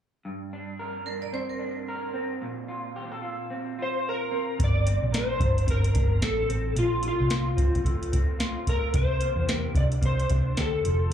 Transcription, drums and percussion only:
4.60 kick loud
4.60 closed hi-hat medium
4.87 closed hi-hat medium
5.14 snare loud
5.14 closed hi-hat medium
5.40 kick medium
5.40 closed hi-hat medium
5.58 closed hi-hat soft
5.67 kick medium
5.67 closed hi-hat medium
5.84 closed hi-hat soft
5.95 kick medium
5.95 closed hi-hat medium
6.22 snare loud
6.22 closed hi-hat medium
6.50 closed hi-hat medium
6.76 closed hi-hat medium
7.03 closed hi-hat medium
7.30 snare loud
7.30 closed hi-hat medium
7.58 kick medium
7.58 closed hi-hat medium
7.75 kick medium
7.75 closed hi-hat soft
7.85 kick medium
7.85 closed hi-hat medium
8.03 closed hi-hat soft
8.13 kick medium
8.13 closed hi-hat medium
8.40 snare loud
8.40 closed hi-hat medium
8.67 kick medium
8.67 closed hi-hat medium
8.94 kick medium
8.94 closed hi-hat medium
9.21 closed hi-hat medium
9.49 snare loud
9.49 closed hi-hat medium
9.75 kick medium
9.75 closed hi-hat medium
9.92 closed hi-hat soft
10.02 kick medium
10.02 closed hi-hat medium
10.20 closed hi-hat soft
10.30 kick medium
10.30 closed hi-hat medium
10.57 snare loud
10.57 closed hi-hat medium
10.85 closed hi-hat medium

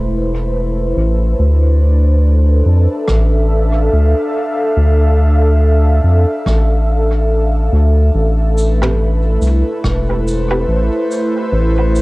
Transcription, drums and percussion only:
3.08 kick loud
3.08 cross-stick medium
6.46 kick loud
6.46 cross-stick medium
8.58 shaker medium
8.83 mid tom medium
9.42 shaker medium
9.84 kick loud
9.84 cross-stick medium
10.28 shaker medium
11.11 shaker medium
11.96 shaker medium

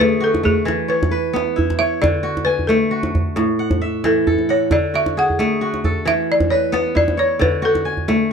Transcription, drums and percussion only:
0.01 djembe slap medium
0.34 djembe slap medium
0.34 djembe tone medium
0.46 djembe slap soft
0.46 djembe bass medium
0.68 djembe slap medium
0.90 djembe slap soft
1.03 djembe slap medium
1.03 djembe tone medium
1.03 djembe bass medium
1.14 djembe slap soft
1.36 djembe slap medium
1.48 djembe slap soft
1.58 djembe bass medium
1.70 djembe slap medium
1.70 djembe tone medium
2.04 djembe slap medium
2.04 djembe bass medium
2.14 djembe slap soft
2.37 djembe slap soft
2.37 djembe tone medium
2.59 djembe bass soft
2.70 djembe slap medium
3.03 djembe slap medium
3.03 djembe tone medium
3.15 djembe slap soft
3.15 djembe bass medium
3.37 djembe slap medium
3.59 djembe slap soft
3.71 djembe slap medium
3.71 djembe tone medium
3.71 djembe bass medium
3.82 djembe slap soft
4.04 djembe slap medium
4.17 djembe slap soft
4.27 djembe bass medium
4.38 djembe tone medium
4.71 djembe slap medium
4.71 djembe bass medium
4.83 djembe slap soft
5.06 djembe slap soft
5.06 djembe tone medium
5.30 djembe bass soft
5.40 djembe slap medium
5.74 djembe slap soft
5.84 djembe slap soft
5.84 djembe bass medium
6.08 djembe slap medium
6.30 djembe slap soft
6.40 djembe slap medium
6.40 djembe tone medium
6.40 djembe bass medium
6.74 djembe slap medium
6.86 djembe slap soft
6.96 djembe bass medium
7.08 djembe slap medium
7.08 djembe tone medium
7.42 djembe slap medium
7.42 djembe bass medium
7.75 djembe slap medium
7.75 djembe tone medium
7.86 djembe slap soft
7.97 djembe slap soft
7.97 djembe bass soft
8.09 djembe slap medium

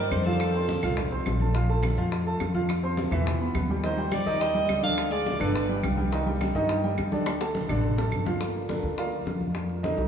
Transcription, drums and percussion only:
0.11 high bongo soft
0.11 low bongo medium
0.11 high conga soft
0.11 claves medium
0.26 high conga medium
0.40 high bongo medium
0.40 high conga soft
0.40 claves medium
0.54 high bongo soft
0.54 high conga soft
0.69 high bongo medium
0.69 high conga medium
0.83 high bongo soft
0.83 high conga soft
0.83 low conga medium
0.83 claves medium
0.97 high bongo medium
0.97 high conga soft
0.97 low conga medium
1.11 high bongo soft
1.11 high conga soft
1.26 high bongo soft
1.26 low bongo medium
1.26 high conga medium
1.26 claves medium
1.40 high conga medium
1.54 high bongo medium
1.54 high conga soft
1.69 high bongo soft
1.69 high conga soft
1.83 high bongo medium
1.83 high conga medium
1.83 claves medium
1.98 high bongo soft
2.11 high bongo medium
2.11 high conga soft
2.26 high bongo soft
2.26 high conga soft
2.40 high bongo soft
2.40 low bongo medium
2.40 high conga soft
2.40 claves medium
2.55 high conga medium
2.69 high bongo medium
2.69 high conga soft
2.69 claves medium
2.83 high bongo soft
2.83 high conga soft
2.97 high bongo medium
2.97 high conga medium
3.12 high bongo soft
3.12 high conga soft
3.12 low conga medium
3.12 claves medium
3.26 high bongo medium
3.26 high conga soft
3.26 low conga medium
3.40 high bongo soft
3.40 high conga soft
3.55 high bongo soft
3.55 low bongo medium
3.55 high conga medium
3.55 claves medium
3.69 high conga medium
3.84 high bongo medium
3.84 high conga soft
3.98 high bongo soft
3.98 high conga soft
4.12 high bongo medium
4.12 high conga medium
4.12 claves medium
4.26 high bongo soft
4.40 high bongo medium
4.40 high conga soft
4.55 high bongo soft
4.55 high conga soft
4.69 high bongo soft
4.69 low bongo medium
4.69 high conga soft
4.69 claves medium
4.83 high conga medium
4.98 high bongo medium
4.98 high conga soft
4.98 claves medium
5.12 high bongo soft
5.12 high conga soft
5.26 high bongo medium
5.26 high conga loud
5.41 high bongo soft
5.41 high conga soft
5.41 low conga medium
5.41 claves medium
5.55 high bongo medium
5.55 high conga soft
5.69 high bongo soft
5.69 high conga soft
5.83 high bongo soft
5.83 low bongo medium
5.83 high conga medium
5.83 claves medium
5.97 high conga medium
6.12 high bongo medium
6.12 high conga soft
6.27 high bongo soft
6.27 high conga soft
6.41 high bongo medium
6.41 high conga loud
6.41 claves medium
6.55 high bongo soft
6.69 high bongo medium
6.69 high conga soft
6.84 high bongo soft
6.84 high conga soft
6.98 high bongo soft
6.98 low bongo medium
6.98 high conga soft
6.98 claves medium
7.12 high conga medium
7.26 high bongo medium
7.26 high conga soft
7.26 claves medium
7.40 high bongo medium
7.40 high conga soft
7.55 high conga loud
7.69 low bongo medium
7.69 high conga soft
7.69 low conga medium
7.69 claves medium
7.83 high conga soft
7.83 low conga medium
7.97 low bongo medium
7.97 high conga soft
8.11 high conga medium
8.11 claves medium
8.26 low bongo medium
8.26 high conga medium
8.40 high bongo medium
8.40 high conga soft
8.55 high bongo soft
8.55 high conga soft
8.69 high bongo medium
8.69 high conga medium
8.84 high bongo soft
8.98 high bongo medium
8.98 high conga soft
9.12 high bongo soft
9.12 high conga soft
9.26 high bongo soft
9.26 low bongo medium
9.26 high conga soft
9.41 high conga medium
9.55 high bongo medium
9.55 high conga soft
9.69 high bongo soft
9.69 high conga soft
9.84 high bongo medium
9.84 high conga loud
9.98 high bongo soft
9.98 high conga soft
9.98 low conga medium

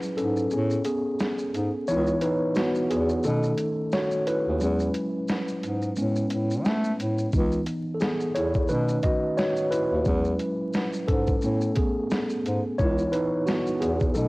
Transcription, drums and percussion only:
0.02 shaker soft
0.18 closed hi-hat medium
0.18 shaker soft
0.36 shaker soft
0.51 shaker medium
0.70 shaker soft
0.85 closed hi-hat medium
0.85 shaker soft
1.19 snare medium
1.19 shaker medium
1.38 shaker soft
1.54 closed hi-hat medium
1.54 shaker soft
1.87 shaker medium
2.06 shaker soft
2.21 closed hi-hat medium
2.21 shaker soft
2.55 snare loud
2.55 shaker medium
2.75 shaker soft
2.91 closed hi-hat medium
2.91 shaker soft
3.09 shaker soft
3.23 shaker medium
3.43 shaker soft
3.58 closed hi-hat medium
3.58 shaker soft
3.92 snare medium
3.92 shaker medium
4.11 shaker soft
4.27 closed hi-hat medium
4.27 shaker soft
4.60 shaker medium
4.79 shaker soft
4.94 closed hi-hat medium
4.94 shaker soft
5.28 snare loud
5.28 shaker medium
5.48 shaker soft
5.63 closed hi-hat medium
5.63 shaker soft
5.82 shaker soft
5.96 shaker medium
6.16 shaker soft
6.30 closed hi-hat medium
6.30 shaker soft
6.50 shaker soft
6.65 snare medium
6.65 shaker medium
6.84 shaker soft
7.00 closed hi-hat medium
7.00 shaker soft
7.18 shaker soft
7.33 kick loud
7.33 shaker medium
7.52 shaker soft
7.66 closed hi-hat medium
7.66 shaker soft
8.01 snare loud
8.01 shaker medium
8.20 shaker soft
8.36 closed hi-hat medium
8.36 shaker soft
8.54 kick medium
8.54 shaker soft
8.68 shaker medium
8.88 shaker soft
9.03 kick medium
9.03 closed hi-hat medium
9.03 shaker soft
9.38 snare medium
9.38 shaker medium
9.56 shaker soft
9.72 closed hi-hat medium
9.72 shaker soft
10.05 kick loud
10.05 shaker medium
10.24 shaker soft
10.39 closed hi-hat medium
10.39 shaker soft
10.73 snare loud
10.73 shaker medium
10.93 shaker soft
11.08 kick medium
11.08 closed hi-hat medium
11.08 shaker soft
11.27 kick medium
11.27 shaker soft
11.41 shaker medium
11.61 shaker soft
11.76 kick medium
11.76 closed hi-hat medium
11.76 shaker soft
12.11 snare loud
12.11 shaker medium
12.29 shaker soft
12.46 closed hi-hat medium
12.46 shaker soft
12.79 kick loud
12.79 shaker medium
12.98 shaker soft
13.13 closed hi-hat medium
13.13 shaker soft
13.47 snare loud
13.47 shaker medium
13.66 shaker soft
13.82 closed hi-hat medium
13.82 shaker soft
14.00 kick medium
14.00 shaker soft
14.14 shaker medium

